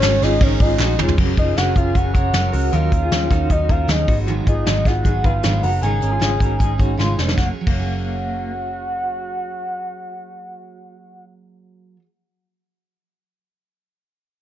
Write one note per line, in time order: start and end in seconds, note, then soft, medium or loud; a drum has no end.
0.00 0.19 G#1 loud
0.00 0.22 G#3 medium
0.00 0.22 C#4 medium
0.00 0.20 F#4 medium
0.00 0.20 A#4 medium
0.00 0.24 C#5 medium
0.00 snare loud
0.00 clap loud
0.00 ride medium
0.04 0.22 D#4 medium
0.04 0.20 G#4 medium
0.22 0.38 G#1 loud
0.22 0.40 G#3 soft
0.22 0.40 C#4 medium
0.22 0.41 D#4 medium
0.22 0.41 F4 medium
0.22 0.41 G#4 medium
0.22 0.40 G#4 medium
0.22 0.44 D#5 medium
0.22 snare soft
0.22 ride medium
0.40 0.57 G#1 loud
0.40 0.60 G#2 medium
0.40 0.60 C#3 medium
0.40 0.60 G#3 medium
0.40 0.60 C#4 medium
0.40 0.61 D#4 medium
0.40 0.60 D#4 medium
0.40 0.59 G#4 medium
0.40 0.60 A#4 medium
0.40 0.63 C#5 medium
0.40 kick medium
0.40 ride medium
0.60 0.76 G#1 loud
0.60 0.79 G#3 soft
0.60 0.80 C#4 soft
0.60 0.80 D#4 soft
0.60 0.80 F4 medium
0.60 0.79 G#4 medium
0.60 0.80 G#4 medium
0.60 0.99 D#5 medium
0.60 kick medium
0.60 ride medium
0.79 0.95 A#1 loud
0.79 0.99 G#3 medium
0.79 1.00 C#4 medium
0.79 0.99 D#4 medium
0.79 0.98 F#4 medium
0.79 0.98 G#4 medium
0.79 snare medium
0.79 clap loud
0.98 1.14 F1 medium
0.98 1.18 G#3 medium
0.98 1.18 C#4 soft
0.98 1.19 D#4 medium
0.98 1.17 F4 medium
0.98 1.18 G#4 medium
0.98 mid tom loud
1.08 floor tom loud
1.18 1.34 F#1 medium
1.18 1.38 F#3 medium
1.18 1.37 C#4 medium
1.18 1.38 C#4 medium
1.18 1.37 F#4 medium
1.18 1.38 G#4 medium
1.18 1.36 A#4 medium
1.18 kick loud
1.18 crash medium
1.37 1.53 F#1 medium
1.37 1.57 C#4 soft
1.37 1.56 F4 medium
1.37 1.56 G#4 medium
1.37 1.57 G#4 soft
1.37 1.57 A#4 soft
1.37 1.58 D#5 medium
1.37 kick medium
1.37 closed hi-hat medium
1.56 1.72 F#1 medium
1.56 1.76 F#3 medium
1.56 1.76 C#4 medium
1.56 1.76 F#4 medium
1.56 1.77 G#4 medium
1.56 1.75 A#4 medium
1.56 1.79 F#5 medium
1.56 snare loud
1.56 closed hi-hat medium
1.76 1.92 F#1 medium
1.76 1.95 C#4 soft
1.76 1.95 F4 medium
1.76 1.93 G#4 medium
1.76 1.96 G#4 soft
1.76 1.95 A#4 soft
1.76 1.98 F5 medium
1.76 kick medium
1.76 closed hi-hat medium
1.95 2.11 F#1 loud
1.95 2.14 F#3 medium
1.95 2.15 C#4 medium
1.95 2.14 G#4 medium
1.95 2.15 G#4 medium
1.95 2.14 A#4 medium
1.95 2.15 F#5 medium
1.95 kick medium
1.95 closed hi-hat medium
2.14 2.30 F#1 medium
2.14 2.33 C#4 soft
2.14 2.34 G#4 soft
2.14 2.51 A#4 medium
2.14 2.34 A#4 soft
2.14 2.50 C#5 medium
2.14 2.76 F#5 medium
2.14 kick medium
2.14 closed hi-hat medium
2.33 2.49 F#1 loud
2.33 2.53 F#3 medium
2.33 2.53 C#4 medium
2.33 2.53 G#4 medium
2.33 2.51 A#4 medium
2.33 snare loud
2.33 closed hi-hat medium
2.52 2.69 C#2 medium
2.52 2.72 C#4 soft
2.52 2.72 F#4 medium
2.52 2.73 G#4 soft
2.52 2.72 A#4 medium
2.52 2.71 A#4 medium
2.52 open hi-hat medium
2.72 2.88 D#2 medium
2.72 2.92 D#3 medium
2.72 2.92 F#3 medium
2.72 2.92 C#4 medium
2.72 2.92 D#4 medium
2.72 3.00 F#4 medium
2.72 3.00 A#4 medium
2.72 2.91 A#4 medium
2.72 3.53 F5 medium
2.72 closed hi-hat medium
2.92 3.08 D#2 medium
2.92 3.11 C#4 soft
2.92 3.11 D#4 soft
2.92 3.11 A#4 soft
2.92 kick medium
2.92 closed hi-hat medium
3.02 3.29 F4 soft
3.02 3.29 G#4 medium
3.11 3.27 D#2 medium
3.11 3.31 D#3 medium
3.11 3.31 F#3 medium
3.11 3.31 C#4 medium
3.11 3.31 D#4 medium
3.11 3.29 A#4 medium
3.11 snare loud
3.11 closed hi-hat medium
3.30 3.46 D#2 medium
3.30 3.50 C#4 soft
3.30 3.50 D#4 medium
3.30 3.49 F#4 medium
3.30 3.50 A#4 medium
3.30 kick medium
3.30 snare soft
3.30 closed hi-hat medium
3.49 3.66 D#2 loud
3.49 3.69 F#3 medium
3.49 3.70 C#4 medium
3.49 3.70 D#4 medium
3.49 3.69 D#4 medium
3.49 3.69 F#4 medium
3.49 3.68 A#4 medium
3.49 3.72 D#5 medium
3.49 kick medium
3.49 closed hi-hat medium
3.69 3.85 D#2 medium
3.69 3.88 C#4 soft
3.69 3.88 D#4 soft
3.69 3.88 F#4 medium
3.69 3.88 A#4 soft
3.69 3.89 A#4 medium
3.69 3.92 F5 medium
3.69 kick medium
3.69 closed hi-hat medium
3.88 4.04 D#2 medium
3.88 4.07 D#3 medium
3.88 4.08 F#3 medium
3.88 4.08 C#4 medium
3.88 4.07 D#4 medium
3.88 4.07 G#4 medium
3.88 4.07 A#4 medium
3.88 4.18 D#5 medium
3.88 snare loud
3.88 closed hi-hat medium
4.07 4.40 G#1 medium
4.07 4.27 F#3 soft
4.07 4.27 B3 soft
4.07 4.27 D#4 soft
4.07 4.27 D#4 medium
4.07 4.26 F#4 medium
4.07 4.27 G#4 medium
4.07 kick loud
4.07 open hi-hat medium
4.27 4.46 G#2 medium
4.27 4.47 D#3 medium
4.27 4.47 F#3 medium
4.27 4.47 B3 medium
4.27 4.47 D#4 medium
4.27 4.46 D#4 medium
4.27 4.46 F#4 medium
4.27 4.46 G#4 medium
4.27 closed hi-hat medium
4.46 4.63 G#1 medium
4.46 4.66 F#3 soft
4.46 4.66 B3 soft
4.46 4.66 D#4 soft
4.46 4.66 F4 soft
4.46 4.65 G#4 medium
4.46 4.66 G#4 soft
4.46 4.88 D#5 medium
4.46 kick medium
4.46 closed hi-hat medium
4.66 4.82 G#1 medium
4.66 4.85 G#2 medium
4.66 4.86 D#3 medium
4.66 4.86 F#3 medium
4.66 4.85 B3 medium
4.66 4.86 D#4 medium
4.66 4.85 D#4 medium
4.66 4.85 F#4 medium
4.66 4.83 G#4 medium
4.66 snare medium
4.66 closed hi-hat medium
4.85 5.01 G#1 medium
4.85 5.02 F#3 soft
4.85 5.04 B3 soft
4.85 5.05 D#4 soft
4.85 5.05 F4 medium
4.85 5.04 G#4 medium
4.85 5.27 F#5 loud
4.85 kick medium
4.85 snare soft
4.85 closed hi-hat medium
5.04 5.21 G#1 medium
5.04 5.24 F#3 medium
5.04 5.24 B3 medium
5.04 5.25 D#4 medium
5.04 5.24 D#4 medium
5.04 5.24 G#4 medium
5.04 5.22 G#4 medium
5.04 kick medium
5.04 closed hi-hat medium
5.24 5.40 G#1 medium
5.24 5.43 F#3 soft
5.24 5.43 B3 soft
5.24 5.44 D#4 soft
5.24 5.43 G#4 soft
5.24 5.61 G#4 medium
5.24 5.61 B4 medium
5.24 5.64 F5 loud
5.24 kick medium
5.24 closed hi-hat medium
5.43 5.60 G#1 medium
5.43 5.63 G#2 medium
5.43 5.63 D#3 medium
5.43 5.63 F#3 medium
5.43 5.62 B3 medium
5.43 5.62 D#4 medium
5.43 5.61 G#4 medium
5.43 snare loud
5.43 closed hi-hat medium
5.62 5.79 F#1 medium
5.62 5.83 F#3 soft
5.62 5.83 B3 soft
5.62 5.82 D#4 soft
5.62 5.82 F#4 soft
5.62 5.82 G#4 soft
5.62 5.81 A#4 medium
5.62 5.82 F#5 medium
5.62 open hi-hat medium
5.82 5.98 G#1 medium
5.82 6.02 G#2 medium
5.82 6.02 C#3 medium
5.82 6.02 G#3 medium
5.82 6.01 C#4 medium
5.82 6.10 D#4 medium
5.82 6.01 D#4 medium
5.82 5.99 G#4 medium
5.82 6.09 A#4 medium
5.82 6.95 G#5 loud
5.82 closed hi-hat medium
6.00 6.18 G#1 medium
6.00 6.20 G#3 soft
6.00 6.19 C#4 soft
6.00 6.20 D#4 soft
6.00 6.20 G#4 soft
6.00 closed hi-hat medium
6.11 6.39 F4 soft
6.11 6.39 G#4 medium
6.19 6.37 G#1 medium
6.19 6.40 G#2 medium
6.19 6.40 C#3 medium
6.19 6.40 G#3 medium
6.19 6.40 C#4 medium
6.19 6.39 D#4 medium
6.19 6.37 G#4 medium
6.19 snare medium
6.19 closed hi-hat medium
6.39 6.56 G#1 medium
6.39 6.57 G#3 soft
6.39 6.59 C#4 soft
6.39 6.60 D#4 medium
6.39 6.60 F#4 medium
6.39 6.59 G#4 medium
6.39 6.59 A#4 medium
6.39 kick medium
6.39 closed hi-hat medium
6.59 6.76 G#1 medium
6.59 6.79 G#3 medium
6.59 6.79 C#4 medium
6.59 6.79 D#4 medium
6.59 6.78 D#4 medium
6.59 6.79 G#4 medium
6.59 6.77 G#4 medium
6.59 kick medium
6.59 closed hi-hat medium
6.78 6.95 G#1 medium
6.78 6.98 G#3 soft
6.78 6.98 C#4 soft
6.78 6.99 D#4 soft
6.78 6.98 F#4 medium
6.78 6.98 G#4 soft
6.78 kick medium
6.78 closed hi-hat medium
6.97 7.15 G#1 medium
6.97 7.18 G#2 medium
6.97 7.18 C#3 medium
6.97 7.18 G#3 medium
6.97 7.17 C#4 medium
6.97 7.18 C#4 medium
6.97 7.17 D#4 medium
6.97 7.18 F4 medium
6.97 7.15 G#4 medium
6.97 snare soft
7.17 7.34 F1 medium
7.17 7.37 G#3 soft
7.17 7.37 B3 soft
7.17 7.38 C#4 soft
7.17 7.37 D#4 medium
7.17 7.38 D#4 medium
7.17 7.37 G#4 medium
7.17 snare medium
7.28 7.53 F#3 medium
7.28 snare medium
7.37 7.49 F#1 medium
7.37 7.53 A#3 medium
7.37 7.49 A#3 medium
7.37 7.48 F#5 medium
7.37 kick medium
7.37 snare medium
7.42 7.71 C#4 medium
7.42 7.75 F#4 medium
7.50 7.64 G#4 medium
7.61 11.96 F#3 medium
7.66 11.95 F#1 medium
7.66 11.99 A#3 medium
7.66 8.51 A#3 medium
7.66 11.25 F#5 medium
7.66 kick medium
7.66 crash medium
7.72 12.02 C#4 medium
7.72 12.03 F#4 medium
7.80 12.06 G#4 medium